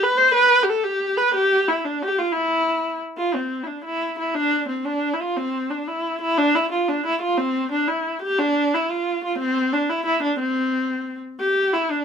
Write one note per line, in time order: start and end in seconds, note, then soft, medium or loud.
0.03 0.19 B4 loud
0.17 0.33 C5 loud
0.34 0.64 B4 loud
0.63 0.70 G4 medium
0.69 0.85 A4 loud
0.84 1.19 G4 loud
1.17 1.33 B4 loud
1.34 1.69 G4 loud
1.68 1.86 E4 medium
1.85 2.04 D4 medium
2.02 2.20 G4 loud
2.18 2.33 F4 medium
2.32 3.00 E4 loud
3.18 3.36 F4 medium
3.34 3.65 C4 medium
3.63 3.83 D4 medium
3.63 3.68 E4 medium
3.84 4.16 E4 medium
4.19 4.36 E4 medium
4.35 4.68 D4 loud
4.68 4.87 C4 medium
4.85 5.15 D4 medium
5.14 5.22 E4 medium
5.20 5.38 F4 medium
5.37 5.71 C4 medium
5.70 5.89 D4 medium
5.87 6.20 E4 medium
6.21 6.39 E4 medium
6.38 6.57 D4 loud
6.55 6.71 E4 loud
6.72 6.90 F4 medium
6.88 7.05 D4 medium
7.06 7.20 E4 medium
7.21 7.39 F4 medium
7.37 7.71 C4 medium
7.72 7.89 D4 medium
7.88 8.21 E4 medium
8.22 8.40 G4 loud
8.39 8.76 D4 loud
8.74 8.91 E4 medium
8.89 9.23 F4 medium
9.24 9.38 F4 medium
9.38 9.74 C4 loud
9.72 9.91 D4 medium
9.90 10.05 E4 medium
10.06 10.21 E4 loud
10.23 10.38 D4 medium
10.39 11.19 C4 medium
11.40 11.75 G4 loud
11.73 11.92 E4 medium
11.90 12.05 D4 medium